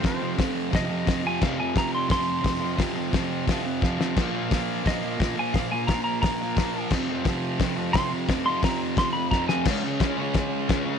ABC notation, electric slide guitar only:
X:1
M:4/4
L:1/8
Q:1/4=174
K:Fm
V:1 name="Electric slide guitar"
c2 z2 e3 a | f a b c' c'4 | z8 | z4 e3 a |
f a b b b4 | z6 c' z | z c' b z c' =b _b a | z8 |]